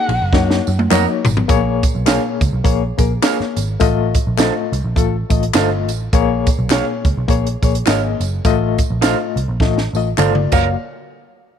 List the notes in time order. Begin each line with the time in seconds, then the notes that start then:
Already playing: A#3 D#4 F#4 G#4 F#5
0.09 A#1, ride
0.22 F#1
0.33 F#2 A#3 D#4 F#4 C#5, kick, snare
0.51 snare
0.67 F#2, tambourine
0.79 high tom
0.91 F2 A#3 C#4 D#4 F#4 A#4 C#5 D#5, clap, mid tom, tambourine
1.25 G#1, floor tom, tambourine
1.37 floor tom
1.48 A#1 A#2 A#3 G#4 C#5, kick, closed hi-hat, tambourine
1.83 kick, closed hi-hat, tambourine
1.95 B1
2.06 A#3 F4 G#4 C#5 F5, snare, clap, closed hi-hat, tambourine
2.41 C#2, kick, closed hi-hat, tambourine
2.53 B1
2.64 A#1 A#3 G#4 C#5, kick, closed hi-hat, tambourine
2.98 A#1 A#3 G#4 A#4, kick, closed hi-hat, tambourine
3.22 A#3 F4 G#4 C#5 F5, snare, clap, closed hi-hat, tambourine
3.40 muted picked electric bass stroke, snare
3.57 G#1, closed hi-hat, tambourine
3.80 A1 A2 A3 F4 D#5, kick, closed hi-hat, tambourine
4.14 kick, closed hi-hat, tambourine
4.27 A#1
4.38 A3 D#4 F4 A4 C5 D#5 F5, snare, clap, closed hi-hat, tambourine
4.72 C2, closed hi-hat, tambourine
4.84 A#1
4.96 A1 A3 F4 A4, kick, closed hi-hat, tambourine
5.30 A1 A3 F4 D#5, kick, closed hi-hat, tambourine
5.43 closed hi-hat
5.54 G1 A3 D#4 F4 A4 C5 D#5 F5, snare, clap, closed hi-hat, tambourine
5.88 A1, closed hi-hat, tambourine
6.13 A#1 A#2 A#3 G#4 C#5, kick, closed hi-hat, tambourine
6.47 kick, closed hi-hat, tambourine
6.59 B1
6.70 A#3 F4 G#4 C#5 F5, snare, clap, closed hi-hat, tambourine
7.05 C#2, kick, closed hi-hat, tambourine
7.17 B1
7.28 A#1 A#3 G#4 C#5, kick, closed hi-hat, tambourine
7.47 closed hi-hat
7.62 A#1 A#3 G#4 C#5, kick, closed hi-hat, tambourine
7.75 closed hi-hat
7.86 G#1 A#3 F4 G#4 C#5 D#5 F5, snare, clap, closed hi-hat, tambourine
8.20 F#1, closed hi-hat, tambourine
8.45 A1 A2 A3 F4 D#5, kick, closed hi-hat, tambourine
8.78 kick, closed hi-hat, tambourine
8.90 A#1
9.01 A3 D#4 F4 A4 C5 D#5 F5, snare, clap, closed hi-hat, tambourine
9.36 C2, closed hi-hat
9.48 A#1
9.60 A1 A3 F4 D#5, kick, snare
9.78 snare
9.93 A1 A3 F4 D#5, tambourine
10.17 G1 A3 D#4 F4 A4 C5 D5 F5, clap, mid tom, tambourine
10.35 mid tom
10.52 F#1 F#2 A#3 F4 F#4 A#4 C#5 F5, kick, crash, tambourine